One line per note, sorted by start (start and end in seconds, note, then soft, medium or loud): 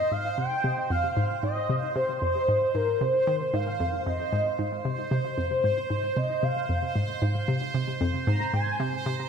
0.00 4.05 C5 medium
0.00 0.13 D#5 loud
0.11 0.32 G#2 medium
0.11 0.37 F5 loud
0.38 0.52 C3 medium
0.38 0.92 G5 loud
0.64 0.72 C3 medium
0.90 1.04 F2 medium
0.90 1.42 F5 loud
1.17 1.25 G#2 medium
1.43 1.64 G#2 medium
1.43 1.92 D#5 loud
1.69 1.83 C3 medium
1.96 2.04 C3 medium
1.96 2.76 C5 loud
2.22 2.36 F2 medium
2.48 2.57 G#2 medium
2.75 2.95 G#2 medium
2.75 3.02 A#4 medium
3.01 3.15 C3 medium
3.01 3.55 C5 medium
3.27 3.41 D#3 medium
3.53 3.74 G#2 medium
3.53 4.08 F5 loud
3.80 4.01 F2 medium
4.06 4.20 F2 medium
4.06 9.29 C5 medium
4.06 4.85 D#5 medium
4.33 4.41 G#2 medium
4.59 4.79 G#2 medium
4.85 4.99 C3 medium
5.11 5.20 C3 medium
5.11 6.18 C5 medium
5.38 5.51 F2 medium
5.64 5.72 G#2 medium
5.90 6.11 G#2 medium
6.17 6.30 C3 medium
6.17 6.45 D#5 loud
6.43 6.51 C3 medium
6.43 6.96 F5 loud
6.69 6.83 F2 medium
6.96 7.04 G#2 medium
7.22 7.43 G#2 medium
7.48 7.62 C3 medium
7.74 7.83 C3 medium
8.01 8.15 F2 medium
8.27 8.35 G#2 medium
8.27 8.52 A#5 loud
8.53 8.74 G#2 medium
8.53 9.02 G#5 loud
8.80 8.94 C3 medium
9.06 9.14 C3 medium